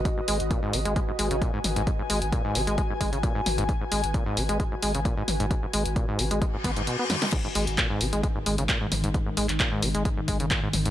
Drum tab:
CC |----------------|----------------|----------------|----------------|
HH |x-oxx-oxx-oxx-ox|x-oxx-oxx-oxx-ox|x-oxx-oxx-oxx-ox|x-oxx-oxx-oxx-ox|
CP |----------------|----------------|----------------|----------------|
SD |----------------|----------------|----------------|--------------oo|
T2 |--------------o-|--------------o-|--------------o-|----------o---o-|
BD |o---o---o---o---|o---o---o-o-o---|o---o---o---o---|o---o---o-o-----|

CC |x---------------|----------------|
HH |x-oxx-oxx-oxx-ox|x-oxx-oxx-oxx-ox|
CP |----x-------x---|---xx-------x---|
SD |----------------|----------------|
T2 |--------------o-|--------------o-|
BD |o---o---o---o---|o---o---o-o-o---|